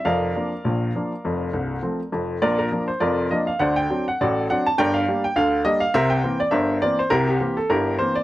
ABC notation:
X:1
M:2/4
L:1/16
Q:"Swing 16ths" 1/4=102
K:Bb
V:1 name="Upright piano"
[Bdf]8- | [Bdf]6 z2 | [FBd] B2 c [FBd]2 e f | [cd^f] g2 f [^FAd]2 f a |
[Bdg] f2 g f2 e f | [Bc=e] g2 d [Bce]2 d c | [=EGB] G2 A [EGB]2 c d |]
V:2 name="Upright piano" clef=bass
[F,,,F,,]2 [F,B,D]2 [B,,,B,,]2 [F,B,D]2 | [F,,,F,,]2 [C,,,C,,]2 [F,A,C]2 [F,,,F,,]2 | [B,,,B,,]2 [F,B,D]2 [F,,,F,,]2 [F,B,D]2 | [D,,D,]2 [^F,CD]2 [A,,,A,,]2 [F,CD]2 |
[G,,,G,,]2 [G,B,D]2 [D,,D,]2 [G,B,D]2 | [C,,C,]2 [=E,B,C]2 [G,,,G,,]2 [E,B,C]2 | [C,,C,]2 [=E,B,C]2 [G,,,G,,]2 [E,B,C]2 |]